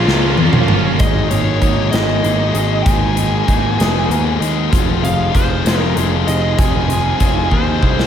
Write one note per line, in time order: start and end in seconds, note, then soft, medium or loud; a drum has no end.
0.00 0.37 F3 medium
0.00 0.96 G#3 medium
0.00 0.37 A#3 medium
0.00 0.38 C#4 medium
0.00 0.34 F4 medium
0.00 0.39 F4 medium
0.00 0.95 D#5 medium
0.00 0.34 F5 medium
0.00 0.99 C6 medium
0.07 0.37 C#2 loud
0.07 0.39 A#3 medium
0.07 0.39 C#4 medium
0.07 0.40 F4 medium
0.07 snare medium
0.37 0.67 F2 medium
0.37 0.98 F3 medium
0.37 0.70 A#3 medium
0.37 0.69 C#4 medium
0.37 high tom medium
0.42 0.67 F4 medium
0.53 mid tom medium
0.68 0.99 G1 medium
0.68 0.99 A#3 medium
0.68 0.99 C#4 medium
0.68 0.98 F4 medium
0.68 mid tom loud
0.99 1.27 G#1 medium
0.99 1.29 G#3 medium
0.99 1.29 A#3 medium
0.99 1.29 D#4 medium
0.99 1.28 G#4 medium
0.99 1.29 D#5 medium
0.99 kick loud
0.99 closed hi-hat medium
1.29 1.58 G#1 medium
1.29 1.60 G#3 medium
1.29 1.61 A#3 medium
1.29 1.61 D#4 medium
1.29 1.61 G#4 medium
1.29 1.91 C#5 medium
1.29 closed hi-hat medium
1.61 1.89 G#1 medium
1.61 1.93 G#3 medium
1.61 1.93 A#3 medium
1.61 1.92 D#4 medium
1.61 1.91 G#4 medium
1.61 kick medium
1.61 closed hi-hat medium
1.91 2.19 G#1 medium
1.91 2.22 G#3 medium
1.91 2.23 A#3 medium
1.91 2.24 D#4 medium
1.91 2.24 G#4 medium
1.91 2.88 D#5 medium
1.91 snare loud
1.91 closed hi-hat medium
2.24 2.51 G#1 medium
2.24 2.54 G#3 medium
2.24 2.54 A#3 medium
2.24 2.54 D#4 medium
2.24 2.53 G#4 medium
2.24 closed hi-hat medium
2.54 2.81 G#1 medium
2.54 2.83 G#3 medium
2.54 2.84 A#3 medium
2.54 2.85 D#4 medium
2.54 2.85 G#4 medium
2.54 closed hi-hat medium
2.82 3.40 G#1 medium
2.82 3.16 G#3 medium
2.82 3.17 A#3 medium
2.82 3.17 D#4 medium
2.82 3.16 G#4 loud
2.82 4.35 G#5 medium
2.82 kick loud
2.82 closed hi-hat medium
3.17 3.47 G#3 medium
3.17 3.47 A#3 medium
3.17 3.48 D#4 medium
3.17 3.48 G#4 medium
3.17 closed hi-hat medium
3.48 3.75 G#1 medium
3.48 3.79 G#3 medium
3.48 3.79 A#3 medium
3.48 3.79 D#4 medium
3.48 3.78 G#4 medium
3.48 kick medium
3.48 closed hi-hat medium
3.79 4.06 F1 medium
3.79 4.09 G#3 medium
3.79 4.09 A#3 medium
3.79 4.10 D#4 medium
3.79 4.10 G#4 medium
3.79 snare loud
3.79 closed hi-hat medium
4.09 4.37 D#2 medium
4.09 4.41 G#3 medium
4.09 4.40 A#3 medium
4.09 4.40 D#4 medium
4.09 4.39 G#4 medium
4.09 closed hi-hat medium
4.40 4.68 D#2 medium
4.40 4.71 G#3 medium
4.40 4.72 A#3 medium
4.40 4.71 D#4 medium
4.40 4.71 G#4 medium
4.40 closed hi-hat medium
4.71 4.99 F1 medium
4.71 5.03 F3 medium
4.71 5.02 C4 medium
4.71 5.02 D#4 medium
4.71 5.34 F4 loud
4.71 5.02 G#4 loud
4.71 kick loud
4.71 closed hi-hat medium
5.02 5.30 F1 medium
5.02 5.31 F3 medium
5.02 5.32 C4 medium
5.02 5.32 D#4 medium
5.02 5.33 G#4 medium
5.02 5.36 F5 loud
5.02 closed hi-hat medium
5.32 5.61 F1 medium
5.32 5.64 F3 medium
5.32 5.64 C4 medium
5.32 5.64 D#4 medium
5.32 5.64 F4 medium
5.32 5.63 G#4 medium
5.32 5.79 C5 medium
5.32 kick medium
5.32 closed hi-hat medium
5.64 5.92 F1 medium
5.64 5.94 F3 medium
5.64 5.94 C4 medium
5.64 5.94 D#4 medium
5.64 5.97 F4 medium
5.64 5.95 G#4 medium
5.64 snare loud
5.64 closed hi-hat medium
5.79 5.93 A#4 medium
5.95 6.23 F1 medium
5.95 6.26 F3 medium
5.95 6.25 C4 medium
5.95 6.25 D#4 medium
5.95 6.59 F4 medium
5.95 6.25 G#4 medium
5.95 closed hi-hat medium
6.26 6.54 F1 medium
6.26 6.56 F3 medium
6.26 6.57 C4 medium
6.26 6.57 D#4 medium
6.26 6.57 G#4 medium
6.26 6.60 D#5 medium
6.26 closed hi-hat medium
6.58 7.13 F1 medium
6.58 6.87 F3 medium
6.58 6.87 C4 medium
6.58 6.86 D#4 medium
6.58 7.20 F4 medium
6.58 6.86 G#4 medium
6.58 7.55 G#5 medium
6.58 kick loud
6.58 closed hi-hat medium
6.87 7.18 F3 medium
6.87 7.18 C4 medium
6.87 7.19 D#4 medium
6.87 7.19 G#4 medium
6.87 closed hi-hat medium
7.19 7.47 F1 medium
7.19 7.50 F3 medium
7.19 7.50 C4 medium
7.19 7.50 D#4 medium
7.19 7.51 F4 medium
7.19 7.49 G#4 medium
7.19 kick medium
7.19 closed hi-hat medium
7.50 7.79 D#2 medium
7.50 7.81 F3 medium
7.50 7.81 C4 medium
7.50 7.82 D#4 medium
7.50 7.83 F4 medium
7.50 7.81 G#4 medium
7.50 8.07 C5 medium
7.50 kick medium
7.82 8.07 C2 medium
7.82 8.07 F3 medium
7.82 8.07 C4 medium
7.82 8.07 D#4 medium
7.82 8.07 F4 medium
7.82 8.07 G#4 medium
7.82 kick medium
7.99 snare medium